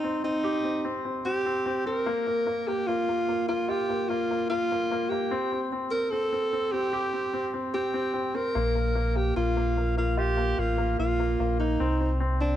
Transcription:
0.00 0.04 C4 medium
0.00 0.22 C4 soft
0.00 0.21 D#4 medium
0.24 0.63 C4 soft
0.24 1.02 D#4 medium
0.44 2.02 G4 medium
0.64 0.83 C4 soft
0.85 1.04 C4 soft
1.05 1.24 C4 soft
1.25 1.45 C4 soft
1.25 1.82 G4 medium
1.46 1.65 C4 soft
1.66 1.85 C4 soft
1.86 2.06 C4 soft
1.86 2.69 A#4 medium
2.06 2.26 A#3 medium
2.27 2.45 A#3 soft
2.47 2.67 A#3 soft
2.67 2.87 A#3 soft
2.67 2.89 G4 medium
2.87 3.07 A#3 soft
2.87 3.48 F4 medium
3.09 3.27 A#3 soft
3.29 3.47 A#3 soft
3.48 3.88 A#3 soft
3.48 3.70 F4 medium
3.69 5.27 F4 soft
3.69 4.11 G4 medium
3.89 4.09 A#3 soft
4.09 4.29 A#3 soft
4.09 4.49 F4 medium
4.31 4.49 A#3 soft
4.50 4.70 A#3 soft
4.50 5.11 F4 medium
4.72 4.90 A#3 soft
4.91 5.10 A#3 soft
5.10 5.31 A#3 soft
5.10 5.64 G4 medium
5.31 5.51 C4 medium
5.52 5.71 C4 soft
5.72 5.91 C4 soft
5.91 6.11 C4 soft
5.91 6.12 A#4 medium
6.11 6.31 C4 soft
6.11 6.73 A4 medium
6.33 6.52 C4 soft
6.53 6.72 C4 soft
6.72 7.12 C4 soft
6.72 7.54 G4 medium
6.93 8.51 G4 medium
7.14 7.32 C4 soft
7.33 7.52 C4 soft
7.54 7.73 C4 soft
7.74 7.93 C4 soft
7.74 8.37 G4 medium
7.94 8.12 C4 soft
8.14 8.33 C4 soft
8.35 8.55 C4 soft
8.35 9.18 A#4 medium
8.55 9.33 A#1 loud
8.55 8.74 A#3 medium
8.75 8.94 A#3 soft
8.95 9.14 A#3 soft
9.16 9.35 A#3 soft
9.16 9.36 G4 medium
9.36 10.54 A#1 medium
9.36 9.55 A#3 soft
9.36 9.93 F4 medium
9.57 9.76 A#3 soft
9.77 9.96 A#3 soft
9.97 10.36 A#3 soft
9.97 10.20 F4 medium
10.17 11.76 F4 soft
10.17 10.61 G4 medium
10.37 10.57 A#3 soft
10.58 10.96 A1 medium
10.58 10.76 A#3 soft
10.58 10.99 F4 medium
10.78 10.98 A#3 soft
10.99 11.37 A#1 medium
10.99 11.18 A#3 soft
10.99 11.56 F4 medium
11.20 11.38 A#3 soft
11.40 11.77 A#1 medium
11.40 11.59 A#3 soft
11.60 11.80 A#3 soft
11.60 12.10 D#4 medium
11.80 12.56 C2 medium
11.80 11.99 C4 medium
12.00 12.19 C4 soft
12.20 12.39 C4 soft
12.41 12.56 C4 soft
12.41 12.56 D4 medium

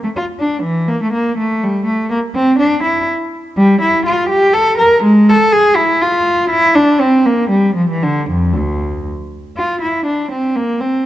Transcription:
0.04 0.09 A3 medium
0.16 0.24 F4 medium
0.40 0.64 D4 medium
0.63 0.88 E3 medium
0.88 1.01 A#3 medium
1.03 1.14 A3 medium
1.13 1.37 A#3 medium
1.38 1.61 A3 medium
1.63 1.87 G3 medium
1.86 2.09 A3 medium
2.10 2.18 A#3 medium
2.35 2.58 C4 medium
2.59 2.82 D4 medium
2.84 3.06 E4 medium
3.57 3.81 G3 loud
3.82 4.05 E4 medium
4.06 4.29 F4 medium
4.30 4.53 G4 medium
4.53 4.78 A4 loud
4.78 5.02 A#4 medium
5.04 5.27 G#3 loud
5.30 5.53 A4 loud
5.52 5.77 G#4 loud
5.75 6.01 E4 medium
6.01 6.51 F4 medium
6.50 6.75 E4 loud
6.75 7.00 D4 loud
7.00 7.25 C4 medium
7.26 7.51 A#3 medium
7.50 7.76 G3 medium
7.75 7.89 F3 medium
7.90 8.03 E3 medium
8.03 8.29 D3 medium
8.30 8.55 F2 medium
8.54 9.07 D2 medium
9.57 9.82 F4 medium
9.82 10.08 E4 medium
10.06 10.32 D4 medium
10.32 10.57 C4 medium
10.56 10.83 A#3 medium
10.81 11.06 C4 medium

